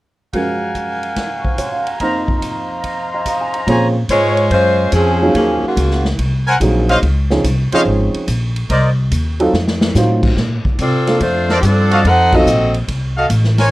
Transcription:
0.33 F#2 F3 F#3 G#3 A#4 F5 F#5 G#5, kick, ride
0.75 kick, hi-hat pedal, ride
1.03 ride
1.16 kick, snare, ride
1.38 C#6
1.44 C5, kick
1.58 C#5 C6, kick, hi-hat pedal, ride
1.72 F5
1.80 A#5
1.86 F#5, ride
2.00 F2 F3 A#3 D#4 C5 D#5 F5 A#5, kick, ride
2.28 kick
2.42 kick, hi-hat pedal, ride
2.84 kick, ride
3.11 D#5 F5 G#5 C6
3.25 F5 D#6, kick, hi-hat pedal, ride
3.39 F5 G#5
3.54 G#5 A#5, ride
3.67 A#2 F3 A#3 C4 C#4 G#4 C5 C#5 G#5 A#5, kick, ride
4.09 G#2 G#3 F4 C5 C#5, kick, hi-hat pedal, ride
4.37 ride
4.51 F#2 G#3 C#4 F4 C5, kick, ride
4.92 F2 F3 C4 C#4 G#4, kick, hi-hat pedal, ride
5.22 F#3 A#3 C#4 D#4 F4
5.34 D#2 F3 A#3 C#4 G#4, kick, ride
5.63 C#3 A#3 F4 F#4, muted upright bass stroke
5.76 C#2, kick, hi-hat pedal, ride
5.91 snare
6.05 snare
6.18 C2, kick, ride
6.47 A#4 C5 F#5 G#5
6.60 A#1 F#3 A#3 C4 D#4 G#4, kick, hi-hat pedal, ride
6.89 C5 C#5 D#5 F5, ride
7.02 C#2, kick, ride
7.30 F3 C4 C#4 D#4 G#4, snare
7.44 C2, kick, hi-hat pedal, ride
7.72 F3 C4 C#4 D#4 G#4 C5 C#5 D#5 F5, muted upright bass stroke, ride
7.86 G#1, kick
8.14 muted upright bass stroke, ride
8.27 A#1, kick, hi-hat pedal, ride
8.56 ride
8.69 C2 A#4 C5 D5 D#5, kick, ride
9.11 D#2, kick, hi-hat pedal, ride
9.40 F#3 C4 D#4 F4 A4, ride
9.53 F2, snare
9.67 snare
9.81 snare
9.95 A2 F#3 C4 D#4 F4 C5, snare, hi-hat pedal
10.23 kick, crash
10.37 A#2, kick, snare
10.65 muted upright bass stroke, kick
10.79 C3 C4 F4 A4 D5, kick, hi-hat pedal, ride
11.07 A#3 C4 D4 F4 A4, snare, ride
11.21 F2 A3 D4 F4 C5, kick, ride
11.49 A4 A#4 C5 D5, snare
11.60 G2 G4, kick, hi-hat pedal, ride
11.65 F3 C4 D4 A4
11.91 F#4 A4 D#5 F5, ride
12.05 F2 D#4 A4 C5 F#5, kick, ride
12.32 F#3 C4 D#4 F4 F#4 A4 D#5, kick, crash
12.46 A#1, hi-hat pedal
12.74 ride
12.88 C2, kick, ride
13.16 F#4 A4 D#5 F5
13.30 A1, kick, hi-hat pedal, ride
13.44 snare
13.58 A#4 C5 C#5 G#5, snare, ride

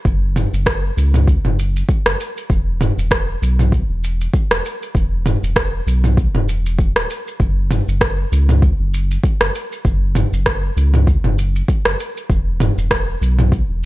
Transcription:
0.05 F#1, kick, shaker
0.36 mid tom, shaker
0.53 F#1, shaker
0.66 kick, cross-stick, shaker
0.97 C#2, shaker
1.14 mid tom, shaker
1.28 kick, shaker
1.45 F#1, mid tom
1.59 shaker
1.76 shaker
1.89 kick, shaker
2.06 F#1, cross-stick
2.20 shaker
2.38 shaker
2.50 E1, kick, shaker
2.81 mid tom, shaker
2.98 E1, shaker
3.11 kick, cross-stick, shaker
3.42 B1, shaker
3.59 mid tom, shaker
3.72 kick, shaker
3.90 E1
4.04 shaker
4.21 shaker
4.34 kick, shaker
4.51 E1, cross-stick
4.66 shaker
4.83 shaker
4.95 E1, kick, shaker
5.26 mid tom, shaker
5.43 E1, shaker
5.56 kick, cross-stick, shaker
5.87 B1, shaker
6.04 mid tom, shaker
6.17 kick, shaker
6.35 E1, mid tom
6.49 shaker
6.66 shaker
6.79 kick, shaker
6.96 D1, cross-stick
7.10 shaker
7.28 shaker
7.40 F#1, kick, shaker
7.71 mid tom, shaker
7.88 F#1, shaker
8.01 kick, cross-stick, shaker
8.32 C#2, shaker
8.49 mid tom, shaker
8.62 kick, shaker
8.80 F#1
8.94 shaker
9.11 shaker
9.24 kick, shaker
9.41 F#1, cross-stick
9.55 shaker
9.72 shaker
9.85 F#1, kick, shaker
10.15 mid tom, shaker
10.33 F#1, shaker
10.46 kick, cross-stick, shaker
10.77 C#2, shaker
10.94 mid tom, shaker
11.07 kick, shaker
11.24 F#1, mid tom
11.39 shaker
11.56 shaker
11.68 kick, shaker
11.85 F#1, cross-stick
12.00 shaker
12.17 shaker
12.30 E1, kick, shaker
12.60 mid tom, shaker
12.77 E1, shaker
12.91 kick, cross-stick, shaker
13.21 B1, shaker
13.39 mid tom, shaker
13.52 kick, shaker
13.70 E1

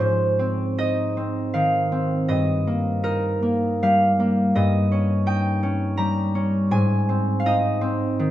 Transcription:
0.00 G#2 C5
0.39 C4
0.78 D#4 D#5
1.17 C4
1.54 D#3 F5
1.92 C4
2.28 G2 D#5
2.67 A#3
3.03 D#4 A#4
3.42 A#3
3.83 G3 F5
4.20 A#3
4.55 G2 D#5
4.92 C#4
5.26 D#4 G5
5.63 C#4
5.97 G3 A#5
6.35 C#4
6.71 G#2 G#5
7.09 C4
7.40 F5
7.46 D#4 D#5
7.81 C4
8.19 D#3

